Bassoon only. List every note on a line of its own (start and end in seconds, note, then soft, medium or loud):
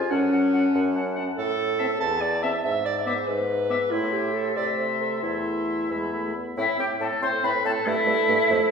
0.11 0.67 F#2 medium
0.75 1.31 F#2 medium
1.38 1.90 A2 medium
2.01 2.54 E2 medium
2.64 3.17 G#2 medium
3.28 3.82 G#2 medium
3.92 4.58 A2 medium
4.56 5.23 C3 medium
5.23 5.89 E2 medium
5.91 6.35 E2 medium
6.57 6.67 A2 medium
6.79 6.89 A2 medium
7.01 7.10 A2 medium
7.22 7.31 A2 medium
7.43 7.53 A2 medium
7.65 7.74 A2 medium
7.86 7.95 G2 medium
8.07 8.16 G2 medium
8.29 8.38 G2 medium
8.50 8.59 F2 loud